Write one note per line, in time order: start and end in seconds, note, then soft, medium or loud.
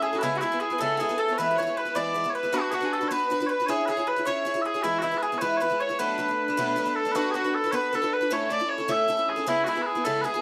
0.00 0.13 C#4 soft
0.00 0.13 E4 medium
0.00 0.19 G#4 medium
0.00 0.20 G#4 medium
0.00 0.17 G#4 medium
0.00 0.11 A4 medium
0.13 0.23 C#4 soft
0.13 0.23 E4 soft
0.13 0.24 F#4 medium
0.13 0.22 A4 medium
0.19 0.35 E4 medium
0.19 0.73 E4 medium
0.19 0.23 B4 loud
0.23 0.41 C#3 medium
0.23 0.40 G#3 medium
0.23 0.41 B3 medium
0.23 0.38 E4 loud
0.23 0.41 E4 medium
0.23 0.42 G#4 medium
0.35 0.40 F#4 medium
0.35 0.41 F#4 medium
0.41 0.51 G#3 medium
0.41 0.51 B3 medium
0.41 0.59 E4 medium
0.41 0.60 E4 medium
0.41 0.51 E4 medium
0.41 0.51 G#4 medium
0.52 0.71 B3 soft
0.52 0.70 E4 medium
0.52 0.69 G#4 medium
0.60 0.78 G#4 medium
0.60 0.80 G#4 loud
0.70 0.80 B3 soft
0.70 0.80 E4 soft
0.70 0.80 G#4 soft
0.70 0.80 B4 medium
0.78 0.99 C#3 medium
0.78 0.98 G#3 medium
0.78 0.99 B3 medium
0.78 0.99 E4 medium
0.78 1.00 G#4 medium
0.78 0.97 A4 medium
0.78 1.16 A4 loud
0.78 1.00 A4 loud
0.97 1.09 G#3 medium
0.97 1.09 B3 medium
0.97 1.09 E4 medium
0.97 1.16 G#4 medium
0.97 1.19 G#4 medium
0.97 1.08 G#4 medium
1.09 1.29 B3 medium
1.09 1.28 E4 soft
1.09 1.27 G#4 medium
1.17 1.33 A4 medium
1.17 1.36 A4 medium
1.17 1.38 A4 medium
1.28 1.39 B3 soft
1.28 1.38 E4 soft
1.28 1.38 G#4 medium
1.28 1.38 C#5 medium
1.36 1.57 E3 medium
1.36 1.57 G#3 medium
1.36 1.58 B3 medium
1.36 1.58 E4 medium
1.36 1.57 B4 medium
1.36 1.50 B4 medium
1.36 1.58 B4 loud
1.51 1.61 B4 medium
1.56 1.67 E3 medium
1.56 1.67 G#3 medium
1.56 1.66 B3 medium
1.56 1.66 E4 medium
1.56 1.75 C#5 medium
1.56 1.77 C#5 loud
1.63 1.75 B4 medium
1.67 1.86 G#3 soft
1.67 1.85 B3 soft
1.67 1.84 E4 medium
1.76 1.97 B4 medium
1.76 1.95 B4 medium
1.76 1.95 B4 loud
1.85 1.95 G#3 soft
1.85 1.95 B3 soft
1.85 1.95 E4 medium
1.95 2.13 E3 medium
1.95 2.14 G#3 medium
1.95 2.14 B3 medium
1.95 2.15 E4 medium
1.95 2.29 D5 loud
1.95 2.33 D5 medium
1.95 2.35 D5 medium
2.14 2.24 E3 medium
2.14 2.25 G#3 medium
2.14 2.24 B3 medium
2.14 2.23 E4 medium
2.24 2.44 G#3 medium
2.24 2.43 B3 medium
2.24 2.42 E4 medium
2.29 2.35 C#5 medium
2.34 2.54 B4 medium
2.34 2.52 B4 medium
2.34 2.54 B4 medium
2.43 2.52 G#3 soft
2.43 2.51 B3 medium
2.43 2.53 E4 medium
2.52 2.70 B3 medium
2.52 2.71 D4 medium
2.52 2.71 F#4 medium
2.52 2.72 F#4 medium
2.52 2.70 F#4 medium
2.52 2.72 F#4 medium
2.52 2.72 B4 medium
2.70 2.82 B3 medium
2.70 2.82 D4 medium
2.70 2.86 F#4 medium
2.70 2.81 F#4 medium
2.70 2.93 F#4 medium
2.70 2.74 G#4 medium
2.70 2.79 B4 medium
2.81 3.01 D4 soft
2.81 3.00 F#4 soft
2.81 3.00 B4 medium
2.85 2.99 G#4 medium
2.93 3.08 A4 medium
2.93 3.11 A4 medium
2.98 3.10 F#4 medium
2.98 3.11 B4 medium
3.02 3.10 D4 soft
3.02 3.10 F#4 soft
3.08 3.29 B3 medium
3.08 3.30 D4 medium
3.08 3.30 F#4 medium
3.08 3.29 B4 medium
3.08 3.31 B4 loud
3.08 3.46 B4 loud
3.08 3.12 C#5 loud
3.30 3.40 B3 medium
3.30 3.40 D4 medium
3.30 3.40 F#4 medium
3.30 3.39 B4 medium
3.40 3.60 D4 soft
3.40 3.59 F#4 soft
3.40 3.59 B4 medium
3.46 3.67 B4 medium
3.46 3.70 B4 medium
3.46 3.66 B4 medium
3.46 3.50 C#5 medium
3.60 3.68 D4 soft
3.60 3.69 F#4 soft
3.60 3.69 B4 soft
3.66 3.87 C#4 medium
3.66 3.87 E4 medium
3.66 3.86 G#4 medium
3.66 3.88 G#4 medium
3.66 3.85 G#4 medium
3.66 3.70 C#5 medium
3.66 3.88 C#5 medium
3.85 3.98 C#4 medium
3.85 3.98 E4 medium
3.85 4.08 G#4 medium
3.85 3.97 G#4 medium
3.85 3.89 B4 medium
3.90 3.96 C#5 medium
3.97 4.18 E4 soft
3.97 4.17 G#4 soft
3.97 4.15 C#5 medium
4.07 4.25 B4 medium
4.07 4.27 B4 medium
4.16 4.26 E4 soft
4.16 4.26 G#4 soft
4.16 4.26 C#5 soft
4.25 4.44 C#4 medium
4.25 4.45 E4 medium
4.25 4.45 G#4 medium
4.25 4.44 C#5 medium
4.25 4.62 C#5 loud
4.25 4.46 C#5 medium
4.45 4.55 C#4 medium
4.45 4.55 E4 medium
4.45 4.54 G#4 medium
4.45 4.53 C#5 medium
4.54 4.75 E4 soft
4.54 4.74 G#4 medium
4.54 4.73 C#5 medium
4.62 4.85 G#4 medium
4.62 4.83 G#4 medium
4.62 4.66 E5 medium
4.66 4.83 G#4 medium
4.74 4.84 E4 soft
4.74 4.84 G#4 medium
4.74 4.84 C#5 soft
4.83 5.01 E3 medium
4.83 5.01 G#3 medium
4.83 5.02 B3 medium
4.83 4.99 E4 medium
4.83 5.03 E4 medium
4.83 5.01 E4 medium
4.83 5.02 E4 medium
4.99 5.12 E3 medium
4.99 5.13 G#3 medium
4.99 5.22 E4 medium
4.99 5.18 E4 medium
4.99 5.03 F#4 medium
5.03 5.11 B3 medium
5.03 5.24 E4 medium
5.03 5.10 E4 medium
5.11 5.32 G#3 soft
5.11 5.31 B3 medium
5.11 5.31 E4 medium
5.18 5.22 B4 medium
5.22 5.40 G#4 medium
5.22 5.38 G#4 medium
5.22 5.41 G#4 medium
5.32 5.40 G#3 soft
5.32 5.41 B3 soft
5.32 5.41 E4 medium
5.38 5.59 E3 medium
5.38 5.60 G#3 medium
5.38 5.60 B3 medium
5.38 5.61 E4 medium
5.38 5.59 B4 medium
5.38 5.57 B4 loud
5.38 5.42 C#5 loud
5.57 5.71 E3 medium
5.57 5.79 B4 medium
5.57 5.82 B4 medium
5.57 5.61 C#5 medium
5.61 5.71 G#3 medium
5.61 5.69 B3 medium
5.61 5.68 E4 medium
5.61 5.80 B4 medium
5.70 5.89 G#3 medium
5.70 5.89 B3 soft
5.70 5.88 E4 medium
5.80 5.99 C#5 medium
5.80 5.98 C#5 medium
5.80 6.01 C#5 medium
5.89 5.99 G#3 soft
5.89 5.98 B3 soft
5.89 5.99 E4 medium
5.99 6.19 B2 medium
5.99 6.17 F#3 medium
5.99 6.18 A3 medium
5.99 6.18 B3 medium
5.99 6.18 D4 medium
5.99 6.96 B4 medium
5.99 6.95 B4 medium
5.99 6.92 B4 medium
6.18 6.28 F#3 medium
6.18 6.29 A3 medium
6.18 6.29 B3 medium
6.18 6.27 D4 medium
6.28 6.48 A3 soft
6.28 6.48 B3 soft
6.28 6.47 D4 medium
6.48 6.57 A3 soft
6.48 6.57 B3 medium
6.48 6.58 D4 medium
6.57 6.77 B2 medium
6.57 6.75 F#3 medium
6.57 6.76 A3 loud
6.57 6.76 B3 loud
6.57 6.77 D4 medium
6.76 6.86 F#3 medium
6.76 6.86 A3 medium
6.76 6.85 B3 medium
6.76 6.84 D4 medium
6.86 7.06 A3 medium
6.86 7.05 B3 medium
6.86 7.04 D4 medium
6.96 7.12 A4 medium
6.96 7.17 A4 medium
7.05 7.15 A3 soft
7.05 7.14 B3 medium
7.05 7.14 D4 medium
7.12 7.33 B3 medium
7.12 7.33 D4 medium
7.12 7.34 F#4 medium
7.12 7.31 F#4 medium
7.12 7.15 B4 medium
7.16 7.34 F#4 medium
7.16 7.34 B4 medium
7.31 7.44 B3 medium
7.31 7.44 D4 medium
7.31 7.54 F#4 medium
7.31 7.35 G#4 medium
7.35 7.53 F#4 medium
7.35 7.44 F#4 medium
7.35 7.43 B4 medium
7.44 7.65 D4 soft
7.44 7.64 F#4 soft
7.44 7.63 B4 medium
7.54 7.72 A4 medium
7.54 7.76 A4 medium
7.64 7.72 D4 soft
7.64 7.72 F#4 soft
7.64 7.73 B4 medium
7.72 7.91 B3 medium
7.72 7.92 D4 medium
7.72 7.93 F#4 medium
7.72 7.93 B4 medium
7.72 7.95 B4 loud
7.72 7.75 C#5 loud
7.92 8.02 B3 medium
7.92 8.03 D4 medium
7.92 8.02 F#4 medium
7.92 8.14 A4 loud
7.92 8.13 A4 medium
7.92 8.01 B4 medium
8.02 8.21 D4 medium
8.02 8.21 F#4 medium
8.02 8.20 B4 medium
8.13 8.33 B4 medium
8.13 8.33 B4 loud
8.21 8.31 D4 soft
8.21 8.31 F#4 soft
8.21 8.31 B4 medium
8.30 8.50 A2 medium
8.30 8.49 A3 medium
8.30 8.50 C#4 medium
8.30 8.50 E4 loud
8.30 8.51 A4 medium
8.30 8.50 C#5 medium
8.30 8.52 C#5 loud
8.50 8.60 A3 medium
8.50 8.60 C#4 medium
8.50 8.60 E4 medium
8.50 8.58 A4 medium
8.50 8.70 D5 loud
8.60 8.79 C#4 soft
8.60 8.78 E4 medium
8.60 8.77 A4 medium
8.68 8.90 C#5 medium
8.68 8.92 C#5 loud
8.78 8.87 C#4 soft
8.78 8.88 E4 soft
8.78 8.88 A4 soft
8.88 9.08 A2 medium
8.88 9.06 A3 medium
8.88 9.07 C#4 medium
8.88 9.08 E4 loud
8.88 9.08 A4 medium
8.88 9.29 E5 medium
8.88 9.30 E5 loud
9.08 9.18 A3 medium
9.08 9.18 C#4 medium
9.08 9.17 E4 medium
9.08 9.16 A4 medium
9.17 9.37 C#4 medium
9.17 9.36 E4 medium
9.17 9.35 A4 medium
9.28 9.46 G#4 medium
9.28 9.49 G#4 loud
9.36 9.47 C#4 soft
9.36 9.46 E4 soft
9.36 9.46 A4 medium
9.46 9.66 C#3 medium
9.46 9.65 G#3 medium
9.46 9.66 B3 medium
9.46 9.64 E4 medium
9.46 9.66 E4 medium
9.46 9.64 E4 loud
9.46 9.66 G#4 medium
9.64 9.76 G#3 medium
9.64 9.76 B3 medium
9.64 10.06 E4 medium
9.64 9.75 E4 medium
9.64 9.82 E4 medium
9.64 9.68 F#4 medium
9.64 9.74 G#4 medium
9.75 9.96 B3 soft
9.75 9.95 E4 soft
9.75 9.94 G#4 soft
9.82 10.04 G#4 loud
9.82 9.86 B4 loud
9.95 10.04 B3 soft
9.95 10.05 E4 soft
9.95 10.05 G#4 medium
10.04 10.24 C#3 medium
10.04 10.23 G#3 medium
10.04 10.23 B3 medium
10.04 10.24 E4 loud
10.04 10.24 G#4 medium
10.04 10.21 A4 loud
10.04 10.24 A4 medium
10.21 10.33 G#3 medium
10.21 10.34 B3 medium
10.21 10.34 E4 medium
10.21 10.42 G#4 loud
10.21 10.41 G#4 medium
10.21 10.25 B4 medium
10.25 10.33 G#4 medium
10.34 10.42 B3 medium
10.34 10.42 E4 medium
10.34 10.42 G#4 medium